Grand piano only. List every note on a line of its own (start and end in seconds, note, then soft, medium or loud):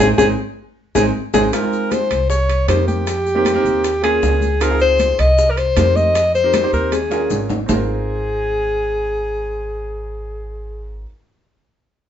0.00 0.11 G#3 medium
0.00 0.11 C4 medium
0.00 0.11 D#4 medium
0.18 0.31 G#3 medium
0.18 0.31 C4 medium
0.18 0.31 D#4 medium
0.96 1.08 G#3 loud
0.96 1.08 C4 loud
0.96 1.08 D#4 loud
1.34 1.46 G#3 medium
1.34 1.46 C4 loud
1.34 1.46 D#4 medium
1.52 1.59 G#3 medium
1.52 1.60 C4 medium
1.52 1.60 D#4 medium
1.52 1.60 F4 medium
1.62 2.16 G#3 medium
1.62 2.17 C4 medium
1.62 2.17 D#4 medium
1.62 2.17 F4 medium
2.68 3.07 A#3 medium
2.68 3.07 C4 medium
2.68 3.07 D#4 medium
2.68 3.07 G4 medium
3.35 3.49 A#3 medium
3.35 3.49 C4 medium
3.35 3.49 D#4 medium
3.35 3.50 G4 loud
3.54 3.83 A#3 loud
3.54 3.84 C4 medium
3.54 3.84 D#4 medium
3.54 3.84 A#4 loud
4.03 4.43 A#3 medium
4.03 4.44 C#4 medium
4.03 4.44 F4 medium
4.03 4.44 G#4 medium
4.60 4.68 C4 medium
4.60 4.68 D#4 medium
4.60 4.68 F4 medium
4.60 4.68 G#4 medium
4.70 5.24 C4 medium
4.70 5.25 D#4 medium
4.70 5.25 F4 medium
4.70 5.25 G#4 medium
5.76 6.15 C4 medium
5.76 6.15 D#4 medium
5.76 6.15 G4 medium
5.76 6.16 A#4 medium
6.43 6.57 C4 medium
6.43 6.57 D#4 medium
6.43 6.58 G4 medium
6.43 6.58 A#4 medium
6.63 6.92 C4 medium
6.63 6.92 D#4 medium
6.63 6.92 G4 medium
6.63 6.93 C5 medium
7.10 7.51 C#4 medium
7.10 7.52 F4 medium
7.10 7.52 G#4 medium
7.10 7.52 A#4 medium
7.66 11.01 C4 medium
7.66 11.03 D#4 medium
7.66 11.05 F4 medium
7.72 11.07 A#4 medium